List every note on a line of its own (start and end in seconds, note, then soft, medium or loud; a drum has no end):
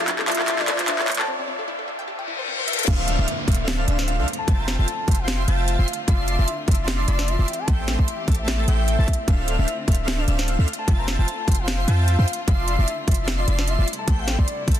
0.00 1.04 F3 medium
0.00 1.04 C4 medium
0.00 1.06 D4 medium
0.00 1.24 A4 medium
0.00 0.17 E5 medium
0.00 riser medium
0.08 0.18 D4 loud
0.08 clap medium
0.08 closed hi-hat medium
0.19 0.27 A4 medium
0.19 clap medium
0.28 0.66 F4 medium
0.28 0.66 D5 medium
0.28 0.35 D5 medium
0.28 0.60 E5 medium
0.28 0.66 E5 medium
0.28 0.66 A5 medium
0.28 0.66 C6 medium
0.28 clap loud
0.28 closed hi-hat medium
0.32 closed hi-hat medium
0.35 closed hi-hat medium
0.39 0.45 F5 loud
0.39 clap medium
0.48 0.55 F4 medium
0.48 clap medium
0.48 closed hi-hat medium
0.59 0.77 D5 loud
0.59 0.63 F5 medium
0.59 clap medium
0.68 0.96 F4 medium
0.68 0.75 A4 medium
0.68 0.96 D5 medium
0.68 0.96 E5 medium
0.68 0.96 A5 medium
0.68 0.96 C6 medium
0.68 clap loud
0.68 closed hi-hat medium
0.79 0.82 F4 medium
0.79 clap medium
0.79 closed hi-hat medium
0.88 0.98 D4 loud
0.88 1.06 E5 medium
0.88 clap loud
0.88 closed hi-hat medium
0.99 1.07 F4 medium
0.99 1.07 A4 medium
0.99 1.07 D5 medium
0.99 1.07 E5 medium
0.99 1.07 A5 medium
0.99 1.07 C6 medium
0.99 clap medium
1.08 1.28 G3 medium
1.08 1.28 C4 medium
1.08 1.28 E4 medium
1.08 1.12 E5 medium
1.08 clap loud
1.08 closed hi-hat medium
1.12 closed hi-hat medium
1.15 closed hi-hat medium
1.19 1.25 G5 loud
1.19 1.28 A5 medium
1.19 clap medium
1.28 1.34 C4 medium
1.39 1.47 C4 medium
1.48 1.54 C4 medium
1.59 1.62 A4 medium
1.68 1.78 E4 loud
1.79 1.87 A4 medium
1.88 1.94 E5 medium
1.99 2.05 G5 loud
2.08 2.14 G4 medium
2.08 reverse cymbal medium
2.19 2.22 G5 medium
2.28 2.34 E4 medium
2.39 2.45 C5 medium
2.48 2.55 C4 medium
2.59 2.65 C5 medium
2.68 2.72 E5 loud
2.68 closed hi-hat medium
2.73 closed hi-hat medium
2.79 2.85 A4 medium
2.79 closed hi-hat medium
2.83 closed hi-hat medium
2.88 3.17 D1 loud
2.88 4.46 D3 medium
2.88 13.84 A3 medium
2.88 5.85 C4 medium
2.88 3.16 D4 medium
2.88 7.44 F4 medium
2.88 3.16 A4 medium
2.88 3.16 C5 medium
2.88 3.16 E5 medium
2.88 3.20 F5 loud
2.88 3.16 F5 loud
2.88 kick loud
2.88 closed hi-hat medium
2.88 crash loud
2.88 downlifter medium
3.08 closed hi-hat medium
3.19 3.25 D1 loud
3.19 3.27 D4 loud
3.19 3.27 A4 medium
3.19 3.27 C5 medium
3.19 3.27 E5 medium
3.19 3.37 E5 medium
3.19 3.27 F5 loud
3.28 closed hi-hat medium
3.48 3.86 D1 loud
3.48 3.86 D4 medium
3.48 3.86 A4 medium
3.48 3.86 C5 medium
3.48 3.66 E5 medium
3.48 3.86 E5 medium
3.48 3.86 F5 loud
3.48 kick loud
3.48 closed hi-hat medium
3.52 closed hi-hat medium
3.55 closed hi-hat medium
3.68 snare loud
3.68 snare medium
3.68 closed hi-hat medium
3.79 3.97 D5 loud
3.88 4.20 D1 loud
3.88 4.16 D4 medium
3.88 4.16 A4 medium
3.88 4.16 C5 medium
3.88 4.16 E5 medium
3.88 4.16 F5 medium
3.88 closed hi-hat medium
3.99 snare medium
4.08 4.26 F5 loud
4.08 closed hi-hat medium
4.19 4.25 D2 loud
4.19 4.27 D4 medium
4.19 4.27 A4 medium
4.19 4.27 C5 medium
4.19 4.27 E5 medium
4.19 4.27 F5 medium
4.28 closed hi-hat medium
4.33 closed hi-hat medium
4.39 4.60 A5 medium
4.48 4.77 F1 loud
4.48 4.76 F4 medium
4.48 4.76 C5 medium
4.48 4.76 E5 medium
4.48 4.76 G5 medium
4.48 4.76 A5 loud
4.48 kick loud
4.48 closed hi-hat medium
4.59 4.70 A#5 medium
4.68 snare medium
4.68 closed hi-hat medium
4.79 4.85 F1 loud
4.79 4.87 F4 medium
4.79 4.87 C5 medium
4.79 4.87 E5 medium
4.79 4.87 G5 medium
4.79 4.87 A5 loud
4.79 5.20 A5 medium
4.79 4.87 A5 loud
4.88 closed hi-hat medium
5.08 5.46 F1 loud
5.08 5.46 F4 medium
5.08 5.46 C5 medium
5.08 5.46 E5 medium
5.08 5.46 G5 medium
5.08 5.46 C6 loud
5.08 kick loud
5.08 closed hi-hat medium
5.11 closed hi-hat medium
5.15 closed hi-hat medium
5.19 6.01 F5 loud
5.28 snare loud
5.28 snare medium
5.28 closed hi-hat medium
5.48 5.77 F1 loud
5.48 5.76 F4 medium
5.48 5.76 C5 medium
5.48 5.76 E5 medium
5.48 5.76 G5 medium
5.48 5.76 A5 medium
5.48 closed hi-hat medium
5.68 closed hi-hat medium
5.79 5.85 F1 loud
5.79 5.87 F4 medium
5.79 5.87 C5 medium
5.79 5.87 E5 medium
5.79 5.87 G5 medium
5.79 5.87 C6 medium
5.88 7.46 D3 medium
5.88 13.84 C4 medium
5.88 closed hi-hat soft
5.93 closed hi-hat medium
6.08 6.37 F1 loud
6.08 6.36 F4 medium
6.08 6.36 D5 medium
6.08 6.36 E5 medium
6.08 6.40 F5 loud
6.08 6.36 A5 medium
6.08 6.36 C6 loud
6.08 kick loud
6.08 closed hi-hat medium
6.28 closed hi-hat medium
6.39 6.45 F1 loud
6.39 6.47 F4 loud
6.39 6.47 D5 medium
6.39 6.57 E5 loud
6.39 6.47 E5 medium
6.39 6.47 A5 medium
6.39 6.47 C6 loud
6.48 closed hi-hat medium
6.68 7.06 F1 loud
6.68 7.06 F4 medium
6.68 7.06 D5 medium
6.68 6.86 E5 medium
6.68 7.06 E5 medium
6.68 7.06 A5 medium
6.68 7.06 C6 loud
6.68 kick loud
6.68 closed hi-hat soft
6.71 closed hi-hat medium
6.75 closed hi-hat medium
6.88 snare loud
6.88 snare medium
6.88 closed hi-hat medium
6.99 7.29 D5 loud
7.08 7.37 F1 loud
7.08 7.36 F4 medium
7.08 7.36 D5 medium
7.08 7.36 E5 medium
7.08 7.36 A5 medium
7.08 7.36 C6 medium
7.08 closed hi-hat medium
7.19 snare medium
7.28 7.60 E5 loud
7.28 closed hi-hat medium
7.39 7.45 F1 loud
7.39 7.47 F4 medium
7.39 7.47 D5 medium
7.39 7.47 E5 medium
7.39 7.47 A5 medium
7.39 7.47 C6 medium
7.48 9.26 E3 medium
7.48 9.26 G4 medium
7.48 closed hi-hat soft
7.53 closed hi-hat medium
7.59 7.70 A5 medium
7.68 7.97 A1 loud
7.68 7.96 A3 medium
7.68 7.96 A4 medium
7.68 7.96 C5 medium
7.68 7.96 E5 medium
7.68 7.96 G5 loud
7.68 kick loud
7.68 closed hi-hat medium
7.79 7.90 G5 medium
7.88 snare medium
7.88 closed hi-hat medium
7.99 8.05 A1 medium
7.99 8.07 A3 loud
7.99 8.07 A4 medium
7.99 8.07 C5 medium
7.99 8.07 E5 medium
7.99 8.23 E5 loud
7.99 8.07 C6 loud
7.99 kick medium
8.08 closed hi-hat medium
8.28 8.66 A1 loud
8.28 8.66 A3 medium
8.28 8.66 A4 medium
8.28 8.66 C5 medium
8.28 8.66 E5 medium
8.28 8.66 A5 loud
8.28 kick loud
8.28 closed hi-hat soft
8.32 closed hi-hat medium
8.35 closed hi-hat medium
8.39 9.29 E5 loud
8.48 snare loud
8.48 snare medium
8.48 closed hi-hat medium
8.68 8.97 A1 loud
8.68 8.96 A3 medium
8.68 8.96 A4 medium
8.68 8.96 C5 medium
8.68 8.96 E5 medium
8.68 8.96 G5 medium
8.68 closed hi-hat medium
8.88 closed hi-hat medium
8.99 9.05 A1 loud
8.99 9.07 A3 medium
8.99 9.07 A4 medium
8.99 9.07 C5 medium
8.99 9.07 E5 medium
8.99 9.07 A5 medium
9.08 kick medium
9.08 closed hi-hat soft
9.13 closed hi-hat medium
9.28 9.57 D1 loud
9.28 10.86 D3 medium
9.28 9.56 D4 medium
9.28 13.84 F4 medium
9.28 9.56 A4 medium
9.28 9.56 C5 medium
9.28 9.56 E5 medium
9.28 9.46 F5 loud
9.28 9.56 F5 loud
9.28 kick loud
9.28 closed hi-hat medium
9.48 closed hi-hat medium
9.59 9.65 D1 loud
9.59 9.67 D4 loud
9.59 9.67 A4 medium
9.59 9.67 C5 medium
9.59 9.77 E5 loud
9.59 9.67 E5 medium
9.59 9.67 F5 loud
9.68 closed hi-hat medium
9.88 10.26 D1 loud
9.88 10.26 D4 medium
9.88 10.26 A4 medium
9.88 10.26 C5 medium
9.88 10.20 E5 loud
9.88 10.26 E5 medium
9.88 10.26 F5 loud
9.88 kick loud
9.88 closed hi-hat soft
9.92 closed hi-hat medium
9.95 closed hi-hat medium
10.08 snare loud
10.08 snare medium
10.08 closed hi-hat medium
10.19 10.37 D5 loud
10.28 10.57 D1 medium
10.28 10.56 D4 medium
10.28 10.56 A4 medium
10.28 10.56 C5 medium
10.28 10.56 E5 medium
10.28 10.56 F5 medium
10.28 closed hi-hat medium
10.39 snare medium
10.48 10.66 F5 loud
10.48 closed hi-hat medium
10.59 10.65 D2 medium
10.59 10.67 D4 medium
10.59 10.67 A4 medium
10.59 10.67 C5 medium
10.59 10.67 E5 medium
10.59 10.67 F5 medium
10.68 closed hi-hat soft
10.73 closed hi-hat medium
10.79 10.90 A5 medium
10.88 11.17 F1 loud
10.88 11.16 F4 medium
10.88 11.16 C5 medium
10.88 11.16 E5 medium
10.88 11.16 G5 medium
10.88 11.16 A5 loud
10.88 kick loud
10.88 closed hi-hat medium
10.99 11.10 A#5 medium
11.08 snare medium
11.08 closed hi-hat medium
11.19 11.25 F1 loud
11.19 11.27 F4 loud
11.19 11.27 C5 medium
11.19 11.27 E5 medium
11.19 11.27 G5 medium
11.19 11.60 A5 loud
11.19 11.27 A5 loud
11.28 closed hi-hat medium
11.48 11.86 F1 loud
11.48 11.86 F4 medium
11.48 11.86 C5 medium
11.48 11.86 E5 medium
11.48 11.86 G5 medium
11.48 11.86 C6 loud
11.48 11.86 C6 medium
11.48 kick loud
11.48 closed hi-hat soft
11.52 closed hi-hat medium
11.55 closed hi-hat medium
11.59 12.41 F5 loud
11.68 snare loud
11.68 snare medium
11.68 closed hi-hat medium
11.88 12.17 F2 loud
11.88 12.16 F4 medium
11.88 12.16 C5 medium
11.88 12.16 E5 medium
11.88 12.16 G5 medium
11.88 12.16 A5 medium
11.88 closed hi-hat medium
12.08 closed hi-hat medium
12.19 12.25 F2 loud
12.19 12.27 F4 medium
12.19 12.27 C5 medium
12.19 12.27 E5 medium
12.19 12.27 G5 medium
12.19 12.27 C6 medium
12.28 13.86 D3 medium
12.28 closed hi-hat soft
12.33 closed hi-hat medium
12.47 12.77 F1 loud
12.47 12.76 F4 medium
12.47 12.76 D5 medium
12.47 12.76 E5 medium
12.47 12.80 F5 loud
12.47 12.76 A5 medium
12.47 12.76 C6 loud
12.47 kick loud
12.47 closed hi-hat medium
12.68 closed hi-hat medium
12.79 12.85 F1 medium
12.79 12.87 F4 loud
12.79 12.87 D5 medium
12.79 12.97 E5 medium
12.79 12.87 E5 medium
12.79 12.87 A5 medium
12.79 12.87 C6 loud
12.88 closed hi-hat medium
13.08 13.46 F1 loud
13.08 13.46 F4 medium
13.08 13.46 D5 medium
13.08 13.40 E5 loud
13.08 13.46 E5 medium
13.08 13.46 A5 medium
13.08 13.46 C6 loud
13.08 kick loud
13.08 closed hi-hat medium
13.11 closed hi-hat medium
13.14 closed hi-hat medium
13.28 snare loud
13.28 snare medium
13.28 closed hi-hat medium
13.39 13.69 D5 loud
13.48 13.77 F1 loud
13.48 13.76 F4 medium
13.48 13.76 D5 medium
13.48 13.76 E5 medium
13.48 13.76 A5 medium
13.48 13.76 C6 medium
13.48 closed hi-hat medium
13.59 snare medium
13.68 13.86 E5 loud
13.68 closed hi-hat medium
13.79 13.85 F1 medium
13.79 13.87 F4 medium
13.79 13.87 D5 medium
13.79 13.87 E5 medium
13.79 13.87 A5 medium
13.79 13.87 C6 medium
13.88 14.80 C3 medium
13.88 14.80 G3 medium
13.88 14.80 A3 medium
13.88 14.80 E4 medium
13.88 closed hi-hat medium
13.93 closed hi-hat medium
13.99 14.20 A5 medium
14.08 14.37 A1 loud
14.08 14.36 A3 medium
14.08 14.36 A4 medium
14.08 14.36 C5 medium
14.08 14.36 E5 medium
14.08 14.36 G5 loud
14.08 kick loud
14.08 closed hi-hat medium
14.19 14.30 F5 medium
14.28 snare medium
14.28 closed hi-hat medium
14.39 14.45 A1 loud
14.39 14.47 A3 loud
14.39 14.47 A4 medium
14.39 14.47 C5 medium
14.39 14.63 D5 medium
14.39 14.47 E5 medium
14.39 14.47 C6 loud
14.39 kick medium
14.48 closed hi-hat medium
14.68 14.80 A1 loud
14.68 14.80 A3 medium
14.68 14.80 A4 medium
14.68 14.80 C5 medium
14.68 14.80 E5 medium
14.68 14.80 A5 loud
14.68 kick loud
14.68 closed hi-hat medium
14.71 closed hi-hat medium
14.74 closed hi-hat medium